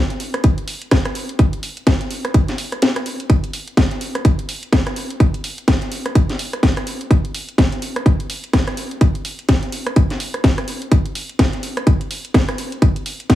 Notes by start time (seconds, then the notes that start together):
0.10 closed hi-hat
0.20 open hi-hat
0.34 cross-stick, closed hi-hat
0.44 kick, closed hi-hat
0.58 closed hi-hat
0.68 open hi-hat
0.82 closed hi-hat
0.91 kick, cross-stick, snare, closed hi-hat
1.05 cross-stick, closed hi-hat
1.15 open hi-hat
1.29 closed hi-hat
1.39 kick, closed hi-hat
1.53 closed hi-hat
1.63 open hi-hat
1.77 closed hi-hat
1.87 kick, snare, closed hi-hat
2.01 closed hi-hat
2.11 open hi-hat
2.25 cross-stick, closed hi-hat
2.34 kick, closed hi-hat
2.48 snare, closed hi-hat
2.58 open hi-hat
2.72 cross-stick, closed hi-hat
2.82 snare, closed hi-hat
2.96 cross-stick, closed hi-hat
3.06 open hi-hat
3.20 closed hi-hat
3.30 kick, closed hi-hat
3.44 closed hi-hat
3.53 open hi-hat
3.68 closed hi-hat
3.77 kick, snare, closed hi-hat
3.91 closed hi-hat
4.01 open hi-hat
4.15 cross-stick, closed hi-hat
4.25 kick, closed hi-hat
4.39 closed hi-hat
4.49 open hi-hat
4.63 closed hi-hat
4.73 kick, cross-stick, snare, closed hi-hat
4.87 cross-stick, closed hi-hat
4.96 open hi-hat
5.10 closed hi-hat
5.20 kick, closed hi-hat
5.34 closed hi-hat
5.44 open hi-hat
5.58 closed hi-hat
5.68 kick, snare, closed hi-hat
5.82 closed hi-hat
5.92 open hi-hat
6.06 cross-stick, closed hi-hat
6.15 kick, closed hi-hat
6.29 snare, closed hi-hat
6.39 open hi-hat
6.53 cross-stick, closed hi-hat
6.63 kick, snare, closed hi-hat
6.77 cross-stick, closed hi-hat
6.87 open hi-hat
7.01 closed hi-hat
7.11 kick, closed hi-hat
7.25 closed hi-hat
7.35 open hi-hat
7.49 closed hi-hat
7.58 kick, snare, closed hi-hat
7.72 closed hi-hat
7.82 open hi-hat
7.96 cross-stick, closed hi-hat
8.06 kick, closed hi-hat
8.20 closed hi-hat
8.30 open hi-hat
8.44 closed hi-hat
8.53 kick, cross-stick, snare, closed hi-hat
8.67 cross-stick, closed hi-hat
8.77 open hi-hat
8.91 closed hi-hat
9.01 kick, closed hi-hat
9.15 closed hi-hat
9.25 open hi-hat
9.39 closed hi-hat
9.49 kick, snare, closed hi-hat
9.63 closed hi-hat
9.72 open hi-hat
9.87 cross-stick, closed hi-hat
9.96 kick, closed hi-hat
10.10 snare, closed hi-hat
10.20 open hi-hat
10.34 cross-stick, closed hi-hat
10.44 kick, snare, closed hi-hat
10.58 cross-stick, closed hi-hat
10.68 open hi-hat
10.82 closed hi-hat
10.92 kick, closed hi-hat
11.06 closed hi-hat
11.15 open hi-hat
11.29 closed hi-hat
11.39 kick, snare, closed hi-hat
11.53 closed hi-hat
11.63 open hi-hat
11.77 cross-stick, closed hi-hat
11.87 kick, closed hi-hat
12.01 closed hi-hat
12.11 open hi-hat
12.25 closed hi-hat
12.34 kick, cross-stick, snare, closed hi-hat
12.49 cross-stick, closed hi-hat
12.58 open hi-hat
12.72 closed hi-hat
12.82 kick, closed hi-hat
12.96 closed hi-hat
13.06 open hi-hat
13.20 closed hi-hat
13.30 kick, snare, closed hi-hat